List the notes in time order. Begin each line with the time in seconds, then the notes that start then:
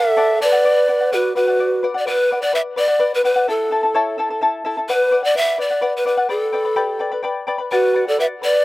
Already playing: A4 E5
0.05 D5 F#5
0.17 A4 D5 F#5
0.40 A4 B4 D5 F#5
0.52 D5 F#5
0.64 B4 D5 F#5
0.88 B4 D5 F#5
1.01 D5 F#5
1.12 F#4 B4 D5 F#5
1.35 F#4 B4 D5 F#5
1.47 D5 F#5
1.59 B4 D5 F#5
1.83 B4 D5 F#5
1.94 D5 F#5
1.98 D5
2.07 B4 D5 F#5
2.31 B4 D5 F#5
2.42 D5 F#5
2.53 B4 D5 E5 F#5
2.76 B4 D5 F#5
2.88 D5 F#5
2.99 B4 D5 F#5
3.14 B4
3.23 B4 D5 F#5
3.36 D5 F#5
3.48 E4 A4 E5 A5
3.71 E4 A4 E5 A5
3.83 E4 A4 A5
3.94 E4 A4 C#5 E5 A5
4.18 E4 A4 E5 A5
4.30 E4 A4 A5
4.41 E4 A4 E5 A5
4.65 E4 A4 E5 A5
4.77 E4 A4 A5
4.89 B4 D5 F#5
5.11 B4 D5 F#5
5.23 D5 F#5
5.35 B4 D5 E5 F#5
5.58 B4 D5 F#5
5.70 D5 F#5
5.81 B4 D5 F#5
5.97 B4
6.05 B4 D5 F#5
6.17 D5 F#5
6.29 A4 B4 D5 G5 B5
6.52 B4 D5 G5 B5
6.65 B4 D5 B5
6.76 G4 B4 D5 G5 B5
6.99 B4 D5 G5 B5
7.12 B4 D5 B5
7.23 B4 D5 G5 B5
7.47 B4 D5 G5 B5
7.58 B4 D5 B5
7.71 F#4 B4 D5 F#5
7.95 B4 D5 F#5
8.07 A4 D5 F#5
8.18 B4 D5 E5 F#5
8.42 B4 D5 F#5
8.54 D5 F#5